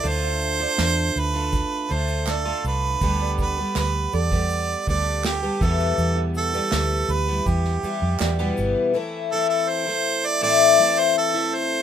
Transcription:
0.03 D2 D3 A3 D4 F4, shaker
0.08 C5
0.23 E5
0.41 shaker
0.59 A3 D4 F4 D5
0.78 E2, snare, clap, shaker
1.15 D2 B4 C5, shaker
1.33 A3 D4 F4
1.52 kick, shaker
1.89 D2 D3 A3 D4 F4 C5, shaker
2.07 shaker
2.27 D5, snare, clap, shaker
2.31 A4
2.45 D3 A3 D4 F4
2.64 C2 B4, shaker
3.01 D2 D3 G3 B3 G4, kick, shaker
3.20 D5
3.38 B4, kick, shaker
3.58 G3 B3 G4 B4
3.75 D2 B4, snare, clap, shaker
4.12 E2 A4 D5, shaker
4.32 G3 B3 G4, kick, shaker
4.50 shaker
4.87 D2 D3 G3 B3 G4 D5, kick, shaker
5.24 G4, snare, clap, shaker
5.43 D3 G3 B3 G4
5.61 E2 B2 E3 G3 B3 G4 A4, kick, shaker
5.80 shaker
5.98 E2, shaker
6.16 E5
6.35 A4, shaker
6.53 E3 G3 B3 G4 D5, shaker
6.72 D2, snare, clap, shaker
7.09 D2 B4, shaker
7.27 E3 G3 B3 G4
7.46 E2 G4, kick, shaker
7.65 snare
7.83 E3 G3 B3 G4, muted fingered electric bass stroke, shaker
8.02 F2
8.20 E2 D5, snare, clap, shaker
8.39 E2 B2 E3 G3 B3 G4
8.57 G1, shaker
8.94 E3 A3 C4 E4
9.32 E3 A3 C4 E4 A4
9.49 A4
9.69 C5
9.86 A3 C4 E4
10.26 D5
10.41 A2 E3 A3 C4 E4 D5
10.79 E3 A3 C4 E4
10.99 C5
11.18 A4
11.34 A3 C4 E4
11.55 C5

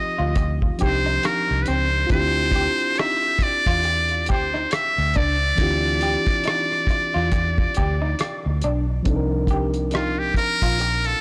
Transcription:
Already playing: F3 C4 D#4 F4 G4 D#5
0.19 D2 F4
0.36 muted clean electric guitar stroke, kick, closed hi-hat
0.62 kick
0.78 F3 C4 D4 D#4 G4 C5, kick, closed hi-hat
0.83 C2
1.06 D#4
1.23 A#4, cross-stick, closed hi-hat
1.51 C2
1.62 B4, closed hi-hat
1.68 C#2 C4 C5
2.07 C4 D4 F4, kick, closed hi-hat
2.11 D2 E4 G4 C5
2.52 G4, kick, closed hi-hat
2.78 closed hi-hat
2.96 D#4 E5, cross-stick, closed hi-hat
3.39 D5, muted fingered electric bass stroke, muted clean electric guitar stroke, kick, closed hi-hat
3.66 E2 F4, kick
3.83 muted clean electric guitar stroke, closed hi-hat
4.09 closed hi-hat
4.26 G4 C5, kick, closed hi-hat
4.31 D2
4.54 D#4, cross-stick
4.71 E5, cross-stick, closed hi-hat
4.98 D2
5.14 C#2 D4 D5, kick, closed hi-hat
5.55 E3 C4 D4, kick, closed hi-hat
5.59 D2 E4 F4 G4
6.01 G4, closed hi-hat
6.26 kick, closed hi-hat
6.44 D#4, cross-stick, closed hi-hat
6.72 cross-stick
6.87 muted fingered electric bass stroke, muted clean electric guitar stroke, kick, closed hi-hat
7.14 E2 F4
7.32 muted clean electric guitar stroke, kick, closed hi-hat
7.58 kick
7.74 G4, kick, closed hi-hat
7.79 D2
8.02 D#4
8.19 cross-stick, closed hi-hat
8.46 D2
8.61 B1 D4, closed hi-hat
9.02 F3 C4 D4, kick, closed hi-hat
9.07 C2 D#4 A4
9.16 A#4
9.47 G4, kick, closed hi-hat
9.74 closed hi-hat
9.91 D#4 F4, cross-stick, closed hi-hat
10.19 G4
10.34 A#4, muted fingered electric bass stroke, muted clean electric guitar stroke, kick, closed hi-hat
10.62 A#1 F4, kick
10.79 muted clean electric guitar stroke, closed hi-hat
11.04 A4, closed hi-hat

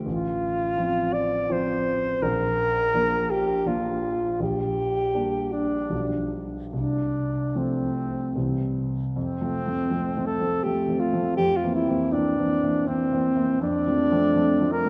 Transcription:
0.06 A1 F4
0.77 F3 C4 F4
1.13 D5
1.49 F3 C4 F4 C5
2.22 A#1 A#4
2.94 F3 A#3 D4
3.31 G4
3.66 F3 A#3 D4 F4
4.40 A#1 G4
5.14 G3 A#3 D4
5.52 D4
5.90 B1 F3 G3 D4
6.73 C2 D4
7.55 F3 A3 C4
8.35 C2 E3 G3 C4
9.14 F2 C4
9.41 F3 A3 C4
9.66 F3 A3 C4
9.90 F3 A3 C4
10.16 F3 A3 C4
10.26 A4
10.41 F3 A3 C4
10.63 F3 A3 C4 G4
10.88 F3 A3 C4
10.99 F4
11.13 F3 A3 C4
11.37 F2 G4
11.56 F4
11.63 E3 A#3 C4
11.74 E4
11.88 E3 A#3 C4
12.12 E3 A#3 C4 D4
12.38 E3 A#3 C4
12.63 E3 A#3 C4
12.88 E3 A#3 C4
13.11 E3 A#3 C4
13.36 E3 A#3 C4
13.61 F2 D4
13.87 F3 A3 C4
14.11 F3 A3 C4
14.36 F3 A3 C4
14.61 F3 A3 C4
14.72 A#4
14.86 F3 A3

